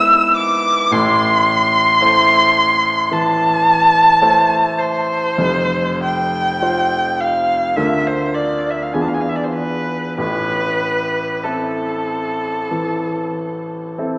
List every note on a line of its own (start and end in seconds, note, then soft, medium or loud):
0.00 0.48 G#3 medium
0.00 0.88 B3 medium
0.00 0.89 E4 soft
0.00 0.89 B4 medium
0.00 0.36 E6 loud
0.36 0.94 D6 loud
0.91 1.98 A1 medium
0.91 1.98 A2 medium
0.91 3.14 C6 loud
2.01 3.08 A3 soft
2.01 3.08 E4 soft
2.01 3.08 C5 medium
3.11 4.91 E3 soft
3.11 4.80 A5 loud
4.22 5.36 A3 soft
4.22 5.37 E4 soft
4.22 5.36 C5 medium
4.79 6.03 C5 medium
5.38 6.59 F1 medium
5.38 6.58 F2 medium
6.04 7.22 G5 medium
6.62 7.74 F4 soft
6.62 7.74 C5 soft
7.20 7.78 F5 medium
7.76 8.91 D2 medium
7.76 8.91 D4 soft
7.76 8.91 F4 soft
7.76 8.91 A#4 soft
7.76 8.09 E5 medium
8.07 8.36 C5 medium
8.34 8.72 D5 medium
8.70 8.84 E5 medium
8.83 8.95 F5 medium
8.93 10.16 E2 medium
8.93 10.15 D4 soft
8.93 10.15 F4 soft
8.93 10.16 G#4 soft
8.93 9.03 G#5 soft
9.02 9.10 A5 medium
9.08 9.15 F5 medium
9.14 9.22 G#5 medium
9.21 9.30 F5 medium
9.29 9.37 E5 medium
9.36 9.45 D5 medium
9.44 9.55 C5 medium
9.53 10.17 B4 medium
10.17 11.42 A1 medium
10.17 11.42 A2 medium
10.17 11.46 B4 medium
11.44 12.67 C4 soft
11.44 12.67 E4 soft
11.44 13.98 A4 medium
11.44 12.67 A4 soft
12.71 14.18 E3 soft
13.98 14.18 C4 soft
13.98 14.18 E4 soft
13.98 14.18 A4 soft